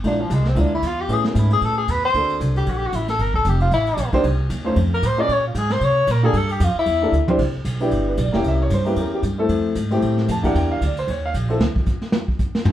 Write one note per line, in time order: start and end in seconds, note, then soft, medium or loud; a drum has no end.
0.04 0.29 A#1 medium
0.04 0.18 G#3 medium
0.04 0.18 A#3 medium
0.04 0.18 D4 medium
0.04 0.23 D4 medium
0.04 0.18 E4 soft
0.04 0.18 F4 medium
0.04 kick soft
0.04 ride medium
0.21 0.36 F3 medium
0.30 0.55 C2 loud
0.30 kick soft
0.30 hi-hat pedal medium
0.30 ride medium
0.34 0.50 G#3 medium
0.45 0.62 C4 medium
0.45 snare soft
0.55 0.81 D2 medium
0.55 0.70 G#3 medium
0.55 0.70 A#3 medium
0.55 0.70 D4 medium
0.55 0.70 E4 medium
0.55 0.70 F4 medium
0.55 kick soft
0.55 ride medium
0.61 0.74 D4 medium
0.75 0.89 E4 medium
0.82 1.08 E2 medium
0.82 kick soft
0.82 hi-hat pedal medium
0.82 ride medium
0.87 1.03 F4 medium
1.01 1.15 G4 loud
1.08 1.34 A2 medium
1.08 1.81 A3 medium
1.08 1.81 B3 medium
1.08 1.81 C#4 medium
1.08 1.81 E4 medium
1.08 1.82 G#4 medium
1.08 kick soft
1.08 ride medium
1.13 1.26 G#4 medium
1.24 1.40 B3 medium
1.24 snare medium
1.35 1.61 G#2 medium
1.35 1.52 E4 medium
1.35 kick soft
1.35 hi-hat pedal medium
1.35 ride medium
1.50 1.66 G#4 loud
1.50 ride soft
1.61 1.87 A2 medium
1.61 1.77 A4 loud
1.61 kick soft
1.61 ride medium
1.78 1.92 G#4 medium
1.88 2.13 E2 medium
1.88 2.04 B4 loud
1.88 kick soft
1.88 hi-hat pedal medium
1.88 ride medium
2.05 2.39 C5 loud
2.13 2.39 D2 medium
2.13 2.86 A#3 medium
2.13 2.86 C4 medium
2.13 2.86 D4 medium
2.13 2.87 F#4 soft
2.13 2.87 A4 medium
2.13 kick soft
2.13 ride medium
2.29 ride soft
2.40 2.66 C2 medium
2.40 kick soft
2.40 hi-hat pedal medium
2.40 ride medium
2.56 2.72 G4 loud
2.56 ride soft
2.66 2.92 A#1 medium
2.66 2.79 F#4 medium
2.66 kick soft
2.66 ride medium
2.78 2.88 G4 loud
2.87 2.97 F#4 medium
2.92 3.18 A1 medium
2.92 3.09 E4 medium
2.92 kick soft
2.92 hi-hat pedal medium
2.92 ride medium
3.08 3.23 A4 loud
3.08 snare soft
3.08 ride medium
3.19 3.44 G1 medium
3.19 3.35 A#4 loud
3.19 kick soft
3.19 ride medium
3.34 3.50 A4 medium
3.34 kick medium
3.45 3.70 F1 loud
3.45 kick soft
3.45 hi-hat pedal medium
3.45 ride medium
3.49 3.61 G4 medium
3.60 3.71 F4 medium
3.60 ride soft
3.71 3.96 A1 medium
3.71 4.11 E4 medium
3.71 kick soft
3.71 ride medium
3.86 ride soft
3.97 4.11 A#1 medium
3.97 kick soft
3.97 hi-hat pedal medium
3.97 ride medium
4.12 4.22 A#3 medium
4.12 4.23 D4 medium
4.12 4.23 D#4 medium
4.12 4.23 G4 medium
4.12 4.23 C5 loud
4.12 kick medium
4.12 ride soft
4.23 4.49 C2 medium
4.23 kick soft
4.23 ride medium
4.50 4.75 D#2 loud
4.50 kick soft
4.50 hi-hat pedal medium
4.50 ride medium
4.64 4.75 A3 medium
4.64 4.75 C#4 medium
4.64 4.75 D#4 medium
4.64 4.75 F4 medium
4.64 4.76 C5 medium
4.76 5.02 F2 medium
4.76 kick soft
4.76 ride medium
4.94 5.08 A#4 medium
5.02 5.28 A2 medium
5.02 kick soft
5.02 hi-hat pedal medium
5.02 ride medium
5.07 5.22 C5 medium
5.17 5.27 A#3 medium
5.17 5.28 C#4 medium
5.17 5.28 F4 medium
5.17 5.28 G#4 medium
5.17 5.34 D5 loud
5.17 5.28 D#5 medium
5.29 5.54 A#2 medium
5.29 kick soft
5.29 ride medium
5.33 5.46 C#5 loud
5.47 5.60 F4 medium
5.55 5.80 G#2 loud
5.55 5.74 G#4 medium
5.55 kick soft
5.55 hi-hat pedal medium
5.55 ride medium
5.70 5.86 C5 loud
5.70 snare medium
5.70 ride soft
5.81 6.06 C3 medium
5.81 6.13 C#5 loud
5.81 kick soft
5.81 ride medium
6.07 6.33 A#2 loud
6.07 kick soft
6.07 hi-hat pedal soft
6.07 ride medium
6.11 6.26 A#4 medium
6.22 6.32 A#3 medium
6.22 6.33 D4 medium
6.22 6.33 F4 medium
6.22 6.33 G4 medium
6.22 6.38 G#4 loud
6.22 6.33 A4 medium
6.33 6.59 G2 medium
6.33 6.53 A4 loud
6.33 kick soft
6.33 ride medium
6.49 6.66 G4 medium
6.49 ride medium
6.60 6.74 F2 loud
6.60 kick soft
6.60 hi-hat pedal medium
6.60 ride medium
6.64 6.77 F4 medium
6.75 7.31 E4 loud
6.75 muted upright bass stroke soft
6.86 7.11 E2 medium
6.86 kick soft
6.86 ride medium
7.01 7.11 A#3 medium
7.01 7.11 D4 medium
7.01 7.12 E4 medium
7.01 7.12 G4 medium
7.01 7.12 A4 medium
7.12 7.38 D2 medium
7.12 hi-hat pedal soft
7.28 7.38 C4 medium
7.28 7.38 D4 medium
7.28 7.38 E4 medium
7.28 7.38 G4 medium
7.28 7.39 C5 medium
7.28 high tom medium
7.38 7.64 C2 medium
7.38 kick medium
7.38 crash medium
7.65 7.90 B1 medium
7.65 kick soft
7.65 hi-hat pedal medium
7.65 ride medium
7.80 8.15 B3 medium
7.80 8.16 D4 medium
7.80 8.16 E4 medium
7.80 8.16 G4 medium
7.80 ride soft
7.91 8.17 G1 medium
7.91 kick soft
7.91 ride medium
8.08 8.18 B4 medium
8.17 8.28 B1 medium
8.17 8.34 D5 medium
8.17 kick soft
8.17 hi-hat pedal medium
8.17 ride medium
8.26 8.34 G1 medium
8.32 8.43 E1 medium
8.32 8.68 A#3 medium
8.32 8.68 C#4 medium
8.32 8.68 E4 medium
8.32 8.69 G4 medium
8.32 8.45 G5 medium
8.32 snare medium
8.44 8.69 C2 medium
8.44 kick soft
8.44 ride medium
8.48 8.61 E5 medium
8.62 8.71 C#5 loud
8.70 8.96 G2 loud
8.70 8.87 C5 medium
8.70 kick soft
8.70 hi-hat pedal medium
8.70 ride medium
8.85 9.20 A#3 medium
8.85 9.20 C#4 medium
8.85 9.21 E4 medium
8.85 9.13 G4 medium
8.85 8.97 B4 medium
8.85 ride soft
8.96 9.22 E2 medium
8.96 kick soft
8.96 ride medium
9.00 9.13 A#4 medium
9.14 9.20 G4 medium
9.23 9.48 G2 medium
9.23 kick soft
9.23 hi-hat pedal medium
9.23 ride medium
9.38 9.73 A3 medium
9.38 9.74 C4 medium
9.38 9.74 E4 medium
9.38 9.74 A4 medium
9.49 9.75 F2 medium
9.49 kick soft
9.49 ride medium
9.75 10.01 G#2 medium
9.75 kick soft
9.75 hi-hat pedal medium
9.75 ride medium
9.90 10.26 A3 medium
9.90 10.26 C4 medium
9.90 10.26 E4 medium
9.90 10.27 G4 medium
9.90 ride soft
10.01 10.27 A2 medium
10.01 kick soft
10.01 ride medium
10.18 snare soft
10.28 10.54 F2 medium
10.28 10.45 A5 medium
10.28 kick soft
10.28 snare soft
10.28 hi-hat pedal medium
10.28 ride medium
10.43 10.78 A#3 medium
10.43 10.79 D4 medium
10.43 10.79 E4 medium
10.43 10.79 G4 medium
10.43 10.55 F#5 medium
10.43 kick medium
10.43 ride medium
10.55 10.80 E2 medium
10.55 10.70 G5 loud
10.55 kick soft
10.55 ride medium
10.71 10.81 F5 loud
10.81 11.07 D2 medium
10.81 10.97 D5 medium
10.81 kick soft
10.81 hi-hat pedal medium
10.81 ride medium
10.97 11.08 C5 medium
10.97 ride medium
11.07 11.33 D#2 medium
11.07 11.24 C#5 medium
11.07 kick soft
11.07 ride medium
11.26 11.31 F5 loud
11.34 11.59 A#1 medium
11.34 kick soft
11.34 hi-hat pedal medium
11.34 ride medium
11.49 11.59 C4 medium
11.49 11.59 E4 medium
11.49 11.59 F4 medium
11.49 11.60 A4 medium
11.49 ride soft
11.59 11.75 D2 medium
11.59 snare loud
11.76 kick medium
11.86 kick medium
11.86 hi-hat pedal medium
12.02 snare soft
12.12 snare loud
12.28 kick medium
12.39 kick medium
12.39 hi-hat pedal medium
12.55 snare medium
12.65 floor tom loud